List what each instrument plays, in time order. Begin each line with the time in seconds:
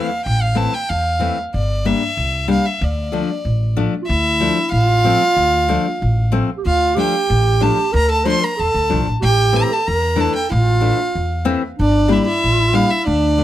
Already playing: violin F5
0.25 upright bass A1, violin G5
0.41 violin F5
0.55 nylon-string guitar E3 A3 C4, violin A5
0.74 violin G5
0.89 upright bass E2, violin F5
1.19 nylon-string guitar E3 A3 C4
1.54 upright bass G1, violin D5
1.85 nylon-string guitar G3 A#3 D4, violin E5
2.17 upright bass C2
2.48 nylon-string guitar G3 A#3 D4, violin F5
2.66 violin E5
2.81 upright bass D2, violin D5
3.12 nylon-string guitar F3 A3 D4
3.45 upright bass A1
3.77 nylon-string guitar F3 A3 D4
4.02 clarinet F4
4.07 upright bass D2, clarinet E4, violin E5
4.40 nylon-string guitar F3 A3 D4
4.72 upright bass A1, clarinet E4, violin F5
4.83 clarinet F4
5.04 nylon-string guitar F3 A3 C4
5.37 upright bass D2
5.68 nylon-string guitar F3 A3 D4
6.02 upright bass A1
6.32 nylon-string guitar F3 A3 C4
6.57 clarinet G4
6.65 upright bass D2, clarinet F4, violin F5
6.95 nylon-string guitar F3 A3 D4, clarinet G4, violin G5
7.30 upright bass A1
7.60 nylon-string guitar F3 A3 D4, violin A5
7.92 upright bass D2, clarinet A#4, violin A#5
8.09 clarinet A4, violin A5
8.25 nylon-string guitar F3 A3 D4, clarinet C5
8.29 violin C6
8.42 clarinet A#4, violin A#5
8.57 upright bass E2, clarinet A4, violin A5
8.74 upright bass D2
8.89 upright bass C2, nylon-string guitar F3 A3 D4
9.06 upright bass A1
9.21 upright bass A1, clarinet G4, violin G5
9.53 nylon-string guitar E3 A3 C4, violin A#5
9.70 clarinet G4 A4, violin A5
9.77 clarinet A4
9.85 upright bass E2, clarinet A#4, violin A#5
10.16 nylon-string guitar E3 A3 D4, clarinet A4
10.21 violin A5
10.36 violin G5
10.50 upright bass A1, clarinet F4, violin F5
10.81 nylon-string guitar E3 A3 D4
11.15 upright bass E2
11.45 nylon-string guitar E3 A3 C4
11.78 upright bass G1, clarinet D4, violin D5
12.08 nylon-string guitar G3 A#3 D4, clarinet E4
12.12 violin D5 E5
12.25 clarinet E4, violin E5
12.44 upright bass A1
12.73 nylon-string guitar G3 A#3 D4, violin F5
12.91 violin E5
13.06 upright bass D2, clarinet D4, violin D5
13.38 nylon-string guitar F3 A3 D4